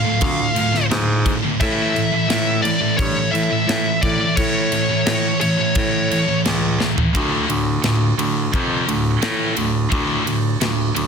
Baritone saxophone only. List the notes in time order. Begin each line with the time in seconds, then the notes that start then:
0.22 D2
0.91 G#2
1.61 A2
2.29 A2
3.00 G2
3.33 A2
3.68 A2
4.03 A2
4.38 A2
5.06 A2
5.76 A2
6.46 C#2
7.15 D2
7.49 D2
7.84 D2
8.17 D2
8.54 F2
8.87 D2
9.22 A2
9.56 D2
9.92 D2
10.25 D2
10.61 D2
10.96 D2